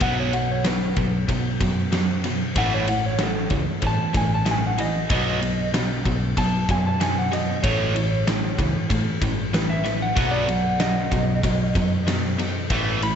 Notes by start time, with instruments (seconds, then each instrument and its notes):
0.00 picked electric bass B1, overdriven electric guitar B2 F#3 B3, electric slide guitar F#5, kick, ride
0.20 electric slide guitar C#5
0.33 overdriven electric guitar B2 F#3, electric slide guitar F#5, ride
0.51 electric slide guitar C#5
0.64 overdriven electric guitar B2 F#3, electric slide guitar B4, snare, ride
0.96 picked electric bass B1, overdriven electric guitar B2 F#3, kick, ride
1.28 picked electric bass B1, overdriven electric guitar B2 F#3, kick, ride
1.61 picked electric bass F#2, overdriven electric guitar B2 F#3, kick, snare, ride
1.92 overdriven electric guitar B2 F#3, snare, ride
2.24 overdriven electric guitar B2 F#3, snare, ride
2.56 picked electric bass A1, overdriven electric guitar A2 E3 A3, electric slide guitar F#5, kick, ride
2.74 electric slide guitar C#5
2.88 overdriven electric guitar A2 E3, electric slide guitar F#5, ride
3.06 electric slide guitar C#5
3.19 overdriven electric guitar A2 E3, snare, ride
3.23 electric slide guitar A4
3.50 picked electric bass C#2, overdriven electric guitar A2 E3, kick, ride
3.82 overdriven electric guitar A2 E3, picked electric bass A2, kick, ride
3.87 electric slide guitar A5
4.13 picked electric bass A1, overdriven electric guitar A2 E3, electric slide guitar G#5, kick, snare, ride
4.35 electric slide guitar A5
4.45 overdriven electric guitar A2 E3, snare, ride
4.51 electric slide guitar G#5
4.67 electric slide guitar F#5
4.78 overdriven electric guitar A2 E3, electric slide guitar D#5, ride
5.10 picked electric bass B1, overdriven electric guitar B2 F#3 B3, electric slide guitar D#5, kick, ride
5.42 overdriven electric guitar B2 F#3, ride
5.74 overdriven electric guitar B2 F#3, snare, ride
6.05 picked electric bass B1, overdriven electric guitar B2 F#3, kick, ride
6.37 picked electric bass B1, overdriven electric guitar B2 F#3, electric slide guitar A5, kick, ride
6.69 picked electric bass F#2, overdriven electric guitar B2 F#3, electric slide guitar G#5, kick, snare, ride
6.87 electric slide guitar A5
7.00 overdriven electric guitar B2 F#3, electric slide guitar G#5, snare, ride
7.18 electric slide guitar F#5
7.32 overdriven electric guitar B2 F#3, electric slide guitar D#5, snare, ride
7.63 picked electric bass A1, overdriven electric guitar A2 E3 A3, electric slide guitar C#5, kick, ride
7.96 overdriven electric guitar A2 E3, ride
8.27 overdriven electric guitar A2 E3, snare, ride
8.58 picked electric bass C#2, overdriven electric guitar A2 E3, kick, ride
8.90 picked electric bass A2, overdriven electric guitar A2 E3, kick, ride
9.21 picked electric bass A1, overdriven electric guitar A2 E3, kick, snare, ride
9.53 overdriven electric guitar A2 E3, electric slide guitar B4, snare, ride
9.70 electric slide guitar E5
9.84 overdriven electric guitar A2 E3, snare, ride
10.02 electric slide guitar F#5
10.16 picked electric bass B1, overdriven electric guitar B2 F#3 B3, kick, ride
10.31 electric slide guitar D5
10.48 overdriven electric guitar B2 F#3, electric slide guitar F#5, ride
10.80 overdriven electric guitar B2 F#3, electric slide guitar D#5, snare, ride
11.12 picked electric bass B1, overdriven electric guitar B2 F#3, kick, ride
11.43 picked electric bass B1, overdriven electric guitar B2 F#3, kick, ride
11.75 picked electric bass F#2, overdriven electric guitar B2 F#3, kick, snare, ride
12.07 overdriven electric guitar B2 F#3, snare, ride
12.38 overdriven electric guitar B2 F#3, snare, ride
12.70 picked electric bass A1, overdriven electric guitar A2 E3 A3, kick, ride
13.02 overdriven electric guitar A2 E3, electric slide guitar B5, ride